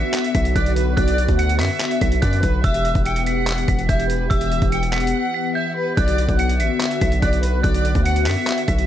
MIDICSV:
0, 0, Header, 1, 6, 480
1, 0, Start_track
1, 0, Key_signature, 2, "minor"
1, 0, Tempo, 416667
1, 1121, Time_signature, 4, 2, 24, 8
1, 10214, End_track
2, 0, Start_track
2, 0, Title_t, "Synth bell"
2, 0, Program_c, 0, 98
2, 0, Note_on_c, 0, 95, 78
2, 372, Note_off_c, 0, 95, 0
2, 398, Note_on_c, 0, 95, 83
2, 623, Note_off_c, 0, 95, 0
2, 640, Note_on_c, 0, 90, 79
2, 1092, Note_off_c, 0, 90, 0
2, 1116, Note_on_c, 0, 90, 109
2, 1570, Note_off_c, 0, 90, 0
2, 1603, Note_on_c, 0, 97, 95
2, 1826, Note_off_c, 0, 97, 0
2, 1846, Note_on_c, 0, 95, 73
2, 2295, Note_off_c, 0, 95, 0
2, 2324, Note_on_c, 0, 95, 82
2, 2546, Note_off_c, 0, 95, 0
2, 2556, Note_on_c, 0, 90, 90
2, 3010, Note_off_c, 0, 90, 0
2, 3042, Note_on_c, 0, 88, 107
2, 3493, Note_off_c, 0, 88, 0
2, 3529, Note_on_c, 0, 97, 93
2, 3749, Note_off_c, 0, 97, 0
2, 3767, Note_on_c, 0, 95, 81
2, 4215, Note_off_c, 0, 95, 0
2, 4241, Note_on_c, 0, 95, 84
2, 4464, Note_off_c, 0, 95, 0
2, 4479, Note_on_c, 0, 91, 84
2, 4931, Note_off_c, 0, 91, 0
2, 4953, Note_on_c, 0, 88, 106
2, 5408, Note_off_c, 0, 88, 0
2, 5441, Note_on_c, 0, 97, 89
2, 5665, Note_off_c, 0, 97, 0
2, 5677, Note_on_c, 0, 95, 89
2, 6130, Note_off_c, 0, 95, 0
2, 6155, Note_on_c, 0, 95, 84
2, 6382, Note_off_c, 0, 95, 0
2, 6396, Note_on_c, 0, 91, 83
2, 6850, Note_off_c, 0, 91, 0
2, 6881, Note_on_c, 0, 90, 105
2, 7332, Note_off_c, 0, 90, 0
2, 7366, Note_on_c, 0, 97, 89
2, 7588, Note_off_c, 0, 97, 0
2, 7605, Note_on_c, 0, 95, 77
2, 8055, Note_off_c, 0, 95, 0
2, 8081, Note_on_c, 0, 95, 83
2, 8304, Note_off_c, 0, 95, 0
2, 8323, Note_on_c, 0, 90, 81
2, 8773, Note_off_c, 0, 90, 0
2, 8795, Note_on_c, 0, 90, 106
2, 9249, Note_off_c, 0, 90, 0
2, 9284, Note_on_c, 0, 97, 96
2, 9506, Note_off_c, 0, 97, 0
2, 9524, Note_on_c, 0, 95, 73
2, 9974, Note_off_c, 0, 95, 0
2, 10001, Note_on_c, 0, 95, 80
2, 10214, Note_off_c, 0, 95, 0
2, 10214, End_track
3, 0, Start_track
3, 0, Title_t, "Violin section"
3, 0, Program_c, 1, 48
3, 0, Note_on_c, 1, 76, 88
3, 599, Note_off_c, 1, 76, 0
3, 642, Note_on_c, 1, 74, 87
3, 869, Note_off_c, 1, 74, 0
3, 880, Note_on_c, 1, 71, 89
3, 1109, Note_off_c, 1, 71, 0
3, 1123, Note_on_c, 1, 74, 99
3, 1573, Note_off_c, 1, 74, 0
3, 1604, Note_on_c, 1, 78, 81
3, 1831, Note_off_c, 1, 78, 0
3, 1839, Note_on_c, 1, 76, 86
3, 2517, Note_off_c, 1, 76, 0
3, 2562, Note_on_c, 1, 74, 82
3, 2790, Note_off_c, 1, 74, 0
3, 2800, Note_on_c, 1, 71, 89
3, 3029, Note_off_c, 1, 71, 0
3, 3044, Note_on_c, 1, 76, 111
3, 3494, Note_off_c, 1, 76, 0
3, 3525, Note_on_c, 1, 79, 84
3, 3751, Note_off_c, 1, 79, 0
3, 3763, Note_on_c, 1, 78, 88
3, 4439, Note_off_c, 1, 78, 0
3, 4481, Note_on_c, 1, 76, 85
3, 4709, Note_off_c, 1, 76, 0
3, 4722, Note_on_c, 1, 71, 90
3, 4949, Note_off_c, 1, 71, 0
3, 4961, Note_on_c, 1, 76, 100
3, 5412, Note_off_c, 1, 76, 0
3, 5441, Note_on_c, 1, 79, 80
3, 5669, Note_off_c, 1, 79, 0
3, 5681, Note_on_c, 1, 78, 86
3, 6358, Note_off_c, 1, 78, 0
3, 6401, Note_on_c, 1, 76, 84
3, 6629, Note_off_c, 1, 76, 0
3, 6643, Note_on_c, 1, 71, 91
3, 6870, Note_off_c, 1, 71, 0
3, 6881, Note_on_c, 1, 74, 108
3, 7332, Note_off_c, 1, 74, 0
3, 7363, Note_on_c, 1, 78, 82
3, 7590, Note_off_c, 1, 78, 0
3, 7601, Note_on_c, 1, 76, 83
3, 8278, Note_off_c, 1, 76, 0
3, 8324, Note_on_c, 1, 74, 87
3, 8551, Note_off_c, 1, 74, 0
3, 8563, Note_on_c, 1, 71, 86
3, 8790, Note_off_c, 1, 71, 0
3, 8804, Note_on_c, 1, 74, 99
3, 9254, Note_off_c, 1, 74, 0
3, 9283, Note_on_c, 1, 78, 84
3, 9510, Note_off_c, 1, 78, 0
3, 9524, Note_on_c, 1, 76, 89
3, 10199, Note_off_c, 1, 76, 0
3, 10214, End_track
4, 0, Start_track
4, 0, Title_t, "Analog synth pad"
4, 0, Program_c, 2, 89
4, 0, Note_on_c, 2, 50, 81
4, 0, Note_on_c, 2, 59, 75
4, 0, Note_on_c, 2, 66, 90
4, 3002, Note_off_c, 2, 50, 0
4, 3002, Note_off_c, 2, 59, 0
4, 3002, Note_off_c, 2, 66, 0
4, 3041, Note_on_c, 2, 67, 91
4, 3042, Note_on_c, 2, 52, 81
4, 3042, Note_on_c, 2, 59, 77
4, 6843, Note_off_c, 2, 52, 0
4, 6843, Note_off_c, 2, 67, 0
4, 6882, Note_on_c, 2, 66, 91
4, 6883, Note_on_c, 2, 50, 82
4, 10214, Note_off_c, 2, 50, 0
4, 10214, Note_off_c, 2, 59, 0
4, 10214, Note_off_c, 2, 66, 0
4, 10214, End_track
5, 0, Start_track
5, 0, Title_t, "808-style bass"
5, 0, Program_c, 3, 38
5, 401, Note_on_c, 3, 35, 104
5, 632, Note_off_c, 3, 35, 0
5, 641, Note_on_c, 3, 35, 106
5, 1102, Note_off_c, 3, 35, 0
5, 1121, Note_on_c, 3, 35, 111
5, 1467, Note_off_c, 3, 35, 0
5, 1482, Note_on_c, 3, 38, 107
5, 1841, Note_on_c, 3, 42, 104
5, 1859, Note_off_c, 3, 38, 0
5, 1955, Note_off_c, 3, 42, 0
5, 2321, Note_on_c, 3, 35, 106
5, 2552, Note_off_c, 3, 35, 0
5, 2561, Note_on_c, 3, 42, 108
5, 2792, Note_off_c, 3, 42, 0
5, 2802, Note_on_c, 3, 35, 108
5, 3032, Note_off_c, 3, 35, 0
5, 3042, Note_on_c, 3, 28, 114
5, 3387, Note_off_c, 3, 28, 0
5, 3402, Note_on_c, 3, 28, 100
5, 4208, Note_off_c, 3, 28, 0
5, 4242, Note_on_c, 3, 28, 105
5, 4472, Note_off_c, 3, 28, 0
5, 4482, Note_on_c, 3, 28, 105
5, 4942, Note_off_c, 3, 28, 0
5, 4961, Note_on_c, 3, 28, 114
5, 5307, Note_off_c, 3, 28, 0
5, 5322, Note_on_c, 3, 28, 105
5, 5921, Note_off_c, 3, 28, 0
5, 6882, Note_on_c, 3, 35, 115
5, 7227, Note_off_c, 3, 35, 0
5, 7242, Note_on_c, 3, 35, 106
5, 7602, Note_on_c, 3, 33, 104
5, 7619, Note_off_c, 3, 35, 0
5, 7716, Note_off_c, 3, 33, 0
5, 8082, Note_on_c, 3, 35, 104
5, 8312, Note_off_c, 3, 35, 0
5, 8322, Note_on_c, 3, 35, 109
5, 8783, Note_off_c, 3, 35, 0
5, 8802, Note_on_c, 3, 35, 119
5, 9147, Note_off_c, 3, 35, 0
5, 9162, Note_on_c, 3, 38, 106
5, 9521, Note_on_c, 3, 42, 99
5, 9538, Note_off_c, 3, 38, 0
5, 9635, Note_off_c, 3, 42, 0
5, 10001, Note_on_c, 3, 35, 106
5, 10214, Note_off_c, 3, 35, 0
5, 10214, End_track
6, 0, Start_track
6, 0, Title_t, "Drums"
6, 161, Note_on_c, 9, 39, 110
6, 162, Note_on_c, 9, 42, 99
6, 276, Note_off_c, 9, 39, 0
6, 277, Note_off_c, 9, 42, 0
6, 280, Note_on_c, 9, 42, 61
6, 395, Note_off_c, 9, 42, 0
6, 399, Note_on_c, 9, 42, 86
6, 401, Note_on_c, 9, 36, 97
6, 514, Note_off_c, 9, 42, 0
6, 516, Note_off_c, 9, 36, 0
6, 520, Note_on_c, 9, 42, 57
6, 635, Note_off_c, 9, 42, 0
6, 641, Note_on_c, 9, 36, 94
6, 641, Note_on_c, 9, 42, 84
6, 756, Note_off_c, 9, 42, 0
6, 757, Note_off_c, 9, 36, 0
6, 762, Note_on_c, 9, 42, 54
6, 878, Note_off_c, 9, 42, 0
6, 880, Note_on_c, 9, 42, 76
6, 995, Note_off_c, 9, 42, 0
6, 1121, Note_on_c, 9, 36, 119
6, 1121, Note_on_c, 9, 42, 87
6, 1237, Note_off_c, 9, 36, 0
6, 1237, Note_off_c, 9, 42, 0
6, 1240, Note_on_c, 9, 42, 83
6, 1356, Note_off_c, 9, 42, 0
6, 1362, Note_on_c, 9, 42, 61
6, 1477, Note_off_c, 9, 42, 0
6, 1480, Note_on_c, 9, 42, 52
6, 1482, Note_on_c, 9, 36, 97
6, 1595, Note_off_c, 9, 42, 0
6, 1597, Note_off_c, 9, 36, 0
6, 1600, Note_on_c, 9, 42, 79
6, 1715, Note_off_c, 9, 42, 0
6, 1721, Note_on_c, 9, 42, 61
6, 1837, Note_off_c, 9, 42, 0
6, 1841, Note_on_c, 9, 39, 96
6, 1841, Note_on_c, 9, 46, 79
6, 1956, Note_off_c, 9, 39, 0
6, 1957, Note_off_c, 9, 46, 0
6, 2080, Note_on_c, 9, 39, 109
6, 2081, Note_on_c, 9, 42, 97
6, 2195, Note_off_c, 9, 39, 0
6, 2196, Note_off_c, 9, 42, 0
6, 2201, Note_on_c, 9, 42, 60
6, 2316, Note_off_c, 9, 42, 0
6, 2319, Note_on_c, 9, 42, 82
6, 2322, Note_on_c, 9, 36, 98
6, 2435, Note_off_c, 9, 42, 0
6, 2437, Note_off_c, 9, 36, 0
6, 2440, Note_on_c, 9, 42, 58
6, 2555, Note_off_c, 9, 42, 0
6, 2560, Note_on_c, 9, 42, 84
6, 2561, Note_on_c, 9, 36, 94
6, 2675, Note_off_c, 9, 42, 0
6, 2677, Note_off_c, 9, 36, 0
6, 2682, Note_on_c, 9, 42, 53
6, 2797, Note_off_c, 9, 42, 0
6, 2799, Note_on_c, 9, 42, 76
6, 2802, Note_on_c, 9, 36, 96
6, 2914, Note_off_c, 9, 42, 0
6, 2917, Note_off_c, 9, 36, 0
6, 3041, Note_on_c, 9, 42, 85
6, 3042, Note_on_c, 9, 36, 120
6, 3156, Note_off_c, 9, 42, 0
6, 3157, Note_off_c, 9, 36, 0
6, 3160, Note_on_c, 9, 42, 82
6, 3275, Note_off_c, 9, 42, 0
6, 3282, Note_on_c, 9, 42, 61
6, 3397, Note_off_c, 9, 42, 0
6, 3399, Note_on_c, 9, 42, 51
6, 3402, Note_on_c, 9, 36, 97
6, 3515, Note_off_c, 9, 42, 0
6, 3517, Note_off_c, 9, 36, 0
6, 3520, Note_on_c, 9, 42, 81
6, 3635, Note_off_c, 9, 42, 0
6, 3641, Note_on_c, 9, 42, 62
6, 3756, Note_off_c, 9, 42, 0
6, 3760, Note_on_c, 9, 42, 69
6, 3876, Note_off_c, 9, 42, 0
6, 4001, Note_on_c, 9, 39, 115
6, 4002, Note_on_c, 9, 42, 96
6, 4117, Note_off_c, 9, 39, 0
6, 4117, Note_off_c, 9, 42, 0
6, 4122, Note_on_c, 9, 42, 61
6, 4237, Note_off_c, 9, 42, 0
6, 4240, Note_on_c, 9, 42, 83
6, 4242, Note_on_c, 9, 36, 96
6, 4355, Note_off_c, 9, 42, 0
6, 4357, Note_off_c, 9, 36, 0
6, 4361, Note_on_c, 9, 42, 56
6, 4477, Note_off_c, 9, 42, 0
6, 4482, Note_on_c, 9, 36, 96
6, 4482, Note_on_c, 9, 42, 82
6, 4597, Note_off_c, 9, 36, 0
6, 4597, Note_off_c, 9, 42, 0
6, 4603, Note_on_c, 9, 42, 56
6, 4718, Note_off_c, 9, 42, 0
6, 4720, Note_on_c, 9, 42, 73
6, 4835, Note_off_c, 9, 42, 0
6, 4961, Note_on_c, 9, 36, 120
6, 4961, Note_on_c, 9, 42, 85
6, 5076, Note_off_c, 9, 36, 0
6, 5076, Note_off_c, 9, 42, 0
6, 5080, Note_on_c, 9, 42, 81
6, 5196, Note_off_c, 9, 42, 0
6, 5202, Note_on_c, 9, 42, 63
6, 5317, Note_off_c, 9, 42, 0
6, 5320, Note_on_c, 9, 42, 50
6, 5322, Note_on_c, 9, 36, 98
6, 5435, Note_off_c, 9, 42, 0
6, 5437, Note_off_c, 9, 36, 0
6, 5439, Note_on_c, 9, 42, 82
6, 5554, Note_off_c, 9, 42, 0
6, 5562, Note_on_c, 9, 42, 60
6, 5677, Note_off_c, 9, 42, 0
6, 5681, Note_on_c, 9, 39, 98
6, 5682, Note_on_c, 9, 42, 44
6, 5682, Note_on_c, 9, 46, 74
6, 5762, Note_off_c, 9, 42, 0
6, 5762, Note_on_c, 9, 42, 59
6, 5796, Note_off_c, 9, 39, 0
6, 5797, Note_off_c, 9, 46, 0
6, 5842, Note_off_c, 9, 42, 0
6, 5842, Note_on_c, 9, 42, 76
6, 5957, Note_off_c, 9, 42, 0
6, 6882, Note_on_c, 9, 36, 125
6, 6882, Note_on_c, 9, 42, 84
6, 6997, Note_off_c, 9, 36, 0
6, 6997, Note_off_c, 9, 42, 0
6, 7001, Note_on_c, 9, 42, 79
6, 7116, Note_off_c, 9, 42, 0
6, 7123, Note_on_c, 9, 42, 61
6, 7238, Note_off_c, 9, 42, 0
6, 7241, Note_on_c, 9, 42, 50
6, 7242, Note_on_c, 9, 36, 95
6, 7356, Note_off_c, 9, 42, 0
6, 7357, Note_off_c, 9, 36, 0
6, 7360, Note_on_c, 9, 42, 80
6, 7475, Note_off_c, 9, 42, 0
6, 7482, Note_on_c, 9, 42, 60
6, 7597, Note_off_c, 9, 42, 0
6, 7601, Note_on_c, 9, 42, 71
6, 7717, Note_off_c, 9, 42, 0
6, 7841, Note_on_c, 9, 39, 112
6, 7841, Note_on_c, 9, 42, 98
6, 7956, Note_off_c, 9, 39, 0
6, 7957, Note_off_c, 9, 42, 0
6, 7961, Note_on_c, 9, 42, 63
6, 8076, Note_off_c, 9, 42, 0
6, 8080, Note_on_c, 9, 42, 81
6, 8082, Note_on_c, 9, 36, 94
6, 8195, Note_off_c, 9, 42, 0
6, 8197, Note_off_c, 9, 36, 0
6, 8201, Note_on_c, 9, 42, 57
6, 8316, Note_off_c, 9, 42, 0
6, 8322, Note_on_c, 9, 36, 98
6, 8322, Note_on_c, 9, 42, 82
6, 8437, Note_off_c, 9, 36, 0
6, 8437, Note_off_c, 9, 42, 0
6, 8442, Note_on_c, 9, 42, 54
6, 8557, Note_off_c, 9, 42, 0
6, 8559, Note_on_c, 9, 42, 78
6, 8674, Note_off_c, 9, 42, 0
6, 8801, Note_on_c, 9, 42, 85
6, 8802, Note_on_c, 9, 36, 121
6, 8917, Note_off_c, 9, 36, 0
6, 8917, Note_off_c, 9, 42, 0
6, 8921, Note_on_c, 9, 42, 82
6, 9037, Note_off_c, 9, 42, 0
6, 9042, Note_on_c, 9, 42, 62
6, 9157, Note_off_c, 9, 42, 0
6, 9159, Note_on_c, 9, 42, 51
6, 9162, Note_on_c, 9, 36, 94
6, 9274, Note_off_c, 9, 42, 0
6, 9277, Note_off_c, 9, 36, 0
6, 9279, Note_on_c, 9, 42, 83
6, 9394, Note_off_c, 9, 42, 0
6, 9401, Note_on_c, 9, 42, 60
6, 9516, Note_off_c, 9, 42, 0
6, 9520, Note_on_c, 9, 39, 100
6, 9520, Note_on_c, 9, 46, 74
6, 9635, Note_off_c, 9, 39, 0
6, 9636, Note_off_c, 9, 46, 0
6, 9761, Note_on_c, 9, 39, 111
6, 9762, Note_on_c, 9, 42, 94
6, 9876, Note_off_c, 9, 39, 0
6, 9877, Note_off_c, 9, 42, 0
6, 9880, Note_on_c, 9, 42, 60
6, 9995, Note_off_c, 9, 42, 0
6, 9998, Note_on_c, 9, 42, 84
6, 10001, Note_on_c, 9, 36, 94
6, 10113, Note_off_c, 9, 42, 0
6, 10116, Note_off_c, 9, 36, 0
6, 10120, Note_on_c, 9, 42, 57
6, 10214, Note_off_c, 9, 42, 0
6, 10214, End_track
0, 0, End_of_file